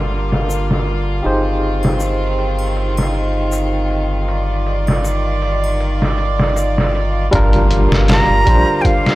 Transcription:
0.00 1.22 G1 medium
0.00 1.21 D3 medium
0.00 1.20 G3 medium
0.00 1.21 G3 medium
0.00 1.21 A#3 medium
0.00 1.20 D4 medium
0.00 1.21 F4 medium
0.00 7.29 F4 medium
0.00 1.22 A#4 medium
0.11 closed hi-hat medium
0.32 snare soft
0.49 closed hi-hat medium
0.49 shaker medium
0.71 snare soft
0.87 closed hi-hat medium
1.23 7.29 G1 medium
1.23 7.29 D#3 medium
1.23 4.26 C4 medium
1.23 7.28 D#4 medium
1.23 7.27 G4 medium
1.23 7.28 G#4 medium
1.23 7.29 C5 medium
1.23 closed hi-hat medium
1.46 closed hi-hat soft
1.63 closed hi-hat medium
1.83 snare soft
1.83 triangle soft
2.00 closed hi-hat medium
2.00 shaker medium
2.39 closed hi-hat medium
2.59 triangle medium
2.77 closed hi-hat medium
2.97 snare soft
2.97 triangle medium
3.15 closed hi-hat medium
3.52 closed hi-hat medium
3.52 shaker medium
3.91 closed hi-hat medium
4.28 7.30 D5 medium
4.28 closed hi-hat medium
4.67 closed hi-hat medium
4.87 snare soft
4.87 triangle soft
5.04 closed hi-hat medium
5.04 shaker medium
5.42 closed hi-hat medium
5.64 triangle soft
5.80 closed hi-hat medium
6.02 snare soft
6.18 closed hi-hat medium
6.39 snare soft
6.56 closed hi-hat medium
6.56 shaker medium
6.78 snare soft
6.95 closed hi-hat medium
7.31 7.87 G1 medium
7.31 9.15 D3 medium
7.31 8.42 G3 loud
7.31 9.15 G3 medium
7.31 9.15 A#3 medium
7.31 8.42 D4 medium
7.31 9.15 F4 medium
7.31 8.43 F4 medium
7.31 kick loud
7.31 closed hi-hat medium
7.31 impact medium
7.35 8.44 A#4 loud
7.53 closed hi-hat soft
7.71 closed hi-hat medium
7.91 8.24 G1 medium
7.91 snare medium
8.08 8.83 A#5 loud
8.08 snare loud
8.08 closed hi-hat medium
8.29 8.45 G1 medium
8.45 8.65 A#1 medium
8.45 9.15 G3 medium
8.45 9.15 D4 medium
8.45 9.15 F4 medium
8.45 kick loud
8.45 closed hi-hat medium
8.50 9.15 C5 loud
8.81 8.87 G5 medium
8.81 kick loud
8.81 closed hi-hat medium
8.86 9.15 F5 loud
9.06 snare medium

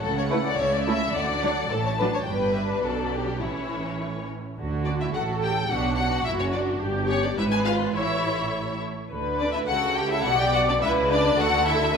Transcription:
0.02 0.49 C#2 medium
0.02 0.48 C#3 medium
0.02 0.16 A4 medium
0.02 0.58 F#5 medium
0.18 0.23 C#5 medium
0.30 0.43 A3 medium
0.30 0.43 E4 medium
0.30 0.36 B4 medium
0.45 0.58 D5 medium
0.58 1.05 C#2 medium
0.58 1.05 C#3 medium
0.58 0.72 C#5 medium
0.58 1.14 E5 medium
0.74 0.87 D5 medium
0.86 0.99 A3 medium
0.86 0.99 E4 medium
0.86 1.14 E5 medium
1.14 1.61 D2 medium
1.14 1.61 D3 medium
1.14 1.71 D5 medium
1.14 1.70 F#5 medium
1.43 1.56 F#3 medium
1.43 1.56 D4 medium
1.69 2.17 A1 medium
1.69 2.17 A2 medium
1.69 1.85 A4 medium
1.69 2.25 A5 medium
1.86 1.91 C#5 medium
1.99 2.12 F#3 medium
1.99 2.12 D4 medium
1.99 2.05 B4 medium
2.14 2.20 C#5 medium
2.25 2.80 G1 medium
2.25 2.80 G2 medium
2.25 2.80 G3 medium
2.25 3.39 D4 medium
2.25 2.84 B4 medium
2.25 2.54 G5 medium
2.53 2.61 E5 soft
2.82 3.41 B1 medium
2.82 3.41 B2 soft
2.82 3.41 F#3 soft
2.82 3.14 A4 medium
2.82 3.40 D5 soft
3.14 3.43 G4 medium
3.40 4.38 A1 soft
3.40 4.38 A2 soft
3.40 4.39 E3 soft
3.40 4.39 C#4 soft
3.40 4.01 E4 medium
3.40 4.27 C#5 soft
4.58 5.06 D2 medium
4.58 5.06 D3 medium
4.58 5.12 F#4 medium
4.85 4.94 D4 medium
4.85 4.91 D5 medium
5.01 5.16 E4 medium
5.01 5.07 E5 medium
5.14 5.62 A1 medium
5.14 5.62 A2 medium
5.14 5.43 F#4 medium
5.14 5.71 A4 medium
5.14 5.22 F#5 medium
5.42 5.52 G4 medium
5.42 5.70 G5 medium
5.69 6.17 B1 medium
5.69 6.16 B2 medium
5.69 6.26 D4 medium
5.69 5.98 F#4 medium
5.69 5.95 F#5 medium
5.96 6.26 F#4 medium
5.96 6.25 F#5 medium
6.25 6.73 F#1 medium
6.25 6.72 F#2 medium
6.25 6.33 E4 medium
6.25 6.81 F#4 medium
6.25 6.31 E5 medium
6.40 6.55 C#4 medium
6.40 6.45 C#5 medium
6.53 6.82 D4 medium
6.53 6.61 D5 medium
6.81 7.35 G1 medium
6.81 7.34 G2 medium
6.81 7.37 G4 medium
7.08 7.16 C#4 medium
7.08 7.22 C#5 medium
7.23 7.30 D4 medium
7.23 7.38 D5 medium
7.37 7.95 G#1 medium
7.37 7.94 G#2 medium
7.37 7.44 E4 medium
7.37 7.94 B4 medium
7.37 7.43 E5 loud
7.53 7.67 G#4 medium
7.53 7.58 G#5 medium
7.66 7.96 F4 medium
7.66 7.74 F5 medium
7.94 8.91 A1 medium
7.94 8.91 A2 medium
7.94 8.82 E4 medium
7.94 8.81 C#5 medium
7.94 8.80 E5 medium
9.10 9.65 D2 medium
9.10 9.64 D3 medium
9.10 9.65 B4 medium
9.40 9.47 D4 medium
9.40 9.53 D5 medium
9.53 9.61 E4 medium
9.53 9.59 E5 medium
9.67 10.26 C#2 medium
9.67 10.25 C#3 medium
9.67 9.97 F#4 medium
9.67 10.26 A4 medium
9.67 9.95 F#5 medium
9.96 10.12 G4 medium
9.96 10.11 G5 medium
10.12 10.26 E4 medium
10.12 10.25 E5 medium
10.24 10.82 B1 medium
10.24 10.81 B2 medium
10.24 10.40 F#4 medium
10.24 10.82 D5 medium
10.24 10.39 F#5 loud
10.41 10.46 G4 medium
10.41 10.55 G5 loud
10.55 10.60 F#4 medium
10.55 10.60 F#5 medium
10.68 10.74 D4 medium
10.68 10.75 D5 medium
10.80 11.38 C#2 medium
10.80 11.37 C#3 medium
10.80 11.09 E4 medium
10.80 11.37 B4 medium
10.80 10.91 E5 loud
11.10 11.38 D4 medium
11.10 11.38 D5 loud
11.37 11.94 D2 medium
11.37 11.93 D3 medium
11.37 11.66 F#4 medium
11.37 11.93 A4 medium
11.37 11.67 F#5 loud
11.67 11.94 E4 medium
11.67 11.95 E5 medium
11.94 11.97 D#3 medium

